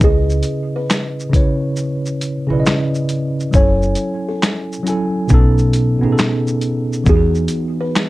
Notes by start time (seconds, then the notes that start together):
Already playing: C#3
0.00 C#2 C#4 E4 G#4 B4, kick, shaker
0.04 D#5
0.30 shaker
0.43 closed hi-hat, shaker
0.76 B4
0.90 snare, clap, shaker
1.20 shaker
1.30 C#3 C#4 E4, kick
1.34 B4 C#5, closed hi-hat, shaker
1.76 shaker
2.06 shaker
2.21 closed hi-hat, shaker
2.47 B1 C#3 C#4 E4
2.52 B4 D5
2.60 D#5
2.66 snare, clap, shaker
2.94 shaker
3.09 closed hi-hat, shaker
3.40 shaker
3.51 F#1 F#3 C#4 E4 C#5, kick, shaker
3.56 A4 G#5
3.82 shaker
3.95 closed hi-hat, shaker
4.29 A4
4.43 snare, clap, shaker
4.72 shaker
4.83 F#3 C#4 E4, closed hi-hat, shaker
4.88 A4 G#5
5.28 B1 B2 B3 C#4, kick, shaker
5.32 D#4 A4
5.58 shaker
5.73 closed hi-hat, shaker
5.99 A1 B2 B3 C#4
6.04 D#4 G#4
6.12 A4
6.18 snare, clap, shaker
6.47 shaker
6.61 closed hi-hat, shaker
6.93 shaker
7.04 E2 E3 B3 D#4, kick, shaker
7.09 F#4 G4 G#4
7.16 G#4
7.35 shaker
7.48 closed hi-hat, shaker
7.81 B4
7.96 snare, clap, shaker